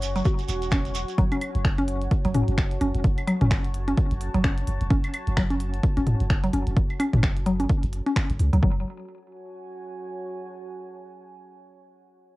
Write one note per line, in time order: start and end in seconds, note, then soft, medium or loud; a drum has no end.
0.00 0.22 F#1 loud
0.00 8.61 F#4 medium
0.00 8.63 C#5 medium
0.00 1.15 G#5 medium
0.00 open hi-hat loud
0.00 shekere medium
0.16 0.20 F#3 loud
0.16 closed hi-hat soft
0.16 shekere soft
0.25 0.31 F#4 medium
0.25 kick loud
0.25 closed hi-hat medium
0.25 shekere medium
0.39 closed hi-hat soft
0.39 shekere soft
0.49 1.04 E1 medium
0.49 open hi-hat medium
0.49 shekere loud
0.62 closed hi-hat soft
0.62 shekere soft
0.71 0.78 C#4 loud
0.71 finger snap medium
0.71 kick loud
0.71 closed hi-hat medium
0.71 shekere medium
0.85 closed hi-hat soft
0.85 shekere soft
0.95 open hi-hat medium
0.95 shekere loud
1.02 8.63 A5 medium
1.09 closed hi-hat soft
1.09 shekere soft
1.18 1.29 F#1 loud
1.18 1.24 F#3 loud
1.18 kick loud
1.18 closed hi-hat medium
1.32 1.36 C#4 medium
1.32 closed hi-hat soft
1.32 claves medium
1.42 open hi-hat medium
1.42 claves medium
1.55 2.08 F#1 loud
1.55 closed hi-hat soft
1.65 finger snap medium
1.65 kick loud
1.65 closed hi-hat medium
1.78 1.82 C#4 loud
1.78 closed hi-hat soft
1.88 open hi-hat medium
2.02 closed hi-hat soft
2.11 kick loud
2.11 closed hi-hat medium
2.25 2.42 F#1 medium
2.25 2.29 F#3 loud
2.25 closed hi-hat soft
2.35 2.40 C#4 medium
2.35 mid tom medium
2.35 open hi-hat medium
2.48 2.78 F#1 medium
2.48 closed hi-hat soft
2.58 finger snap medium
2.58 kick loud
2.58 closed hi-hat medium
2.71 closed hi-hat soft
2.81 2.92 F#1 medium
2.81 2.87 C#4 loud
2.81 open hi-hat medium
2.95 3.02 E1 loud
2.95 closed hi-hat soft
3.04 3.15 F#1 loud
3.04 kick loud
3.04 closed hi-hat medium
3.18 closed hi-hat soft
3.18 claves soft
3.28 3.33 F#3 loud
3.28 open hi-hat medium
3.28 claves medium
3.41 3.94 F#1 loud
3.41 3.45 C#4 medium
3.41 closed hi-hat soft
3.41 mid tom medium
3.51 finger snap medium
3.51 kick loud
3.51 closed hi-hat medium
3.65 closed hi-hat soft
3.74 open hi-hat medium
3.88 3.92 C#4 loud
3.88 closed hi-hat soft
3.97 kick loud
3.97 closed hi-hat medium
4.11 4.29 F#1 medium
4.11 closed hi-hat soft
4.21 open hi-hat medium
4.34 4.64 F#1 loud
4.34 4.38 F#3 loud
4.34 closed hi-hat soft
4.44 4.50 C#4 medium
4.44 finger snap medium
4.44 kick loud
4.44 closed hi-hat medium
4.58 closed hi-hat soft
4.67 4.78 F#1 medium
4.67 open hi-hat medium
4.81 4.88 E1 loud
4.81 closed hi-hat soft
4.90 5.01 F#1 loud
4.90 4.96 C#4 loud
4.90 kick loud
4.90 closed hi-hat medium
5.04 closed hi-hat soft
5.04 claves soft
5.14 open hi-hat medium
5.14 claves medium
5.27 5.80 F#1 loud
5.27 closed hi-hat soft
5.37 5.43 F#3 loud
5.37 finger snap medium
5.37 kick loud
5.37 closed hi-hat medium
5.50 5.55 C#4 medium
5.50 closed hi-hat soft
5.60 open hi-hat medium
5.74 closed hi-hat soft
5.83 kick loud
5.83 closed hi-hat medium
5.97 6.15 F#1 medium
5.97 6.01 C#4 loud
5.97 closed hi-hat soft
6.07 mid tom medium
6.07 open hi-hat medium
6.20 6.50 F#1 loud
6.20 closed hi-hat soft
6.30 finger snap medium
6.30 kick loud
6.30 closed hi-hat medium
6.44 6.48 F#3 loud
6.44 closed hi-hat soft
6.53 6.64 F#1 medium
6.53 6.59 C#4 medium
6.53 open hi-hat medium
6.67 6.74 E1 loud
6.67 closed hi-hat soft
6.76 6.87 F#1 loud
6.76 kick loud
6.76 closed hi-hat medium
6.90 closed hi-hat soft
6.90 claves soft
7.00 7.05 C#4 loud
7.00 open hi-hat medium
7.00 claves medium
7.13 7.66 F#1 loud
7.13 closed hi-hat soft
7.13 mid tom medium
7.23 finger snap medium
7.23 kick loud
7.23 closed hi-hat medium
7.37 closed hi-hat soft
7.46 7.52 F#3 loud
7.46 open hi-hat medium
7.60 7.64 C#4 medium
7.60 open hi-hat soft
7.69 kick loud
7.69 closed hi-hat medium
7.83 8.01 F#1 medium
7.83 closed hi-hat soft
7.93 open hi-hat medium
8.06 8.10 C#4 loud
8.06 closed hi-hat soft
8.16 finger snap medium
8.16 kick loud
8.16 closed hi-hat medium
8.30 8.37 F#1 medium
8.30 closed hi-hat soft
8.39 8.50 C#2 medium
8.39 open hi-hat medium
8.53 8.61 C#2 medium
8.53 8.57 F#3 loud
8.53 open hi-hat soft
8.62 8.84 F#1 medium
8.62 8.84 F#3 loud
8.62 10.45 F#4 medium
8.62 kick loud
8.71 10.45 C#5 medium
8.78 10.45 G#5 medium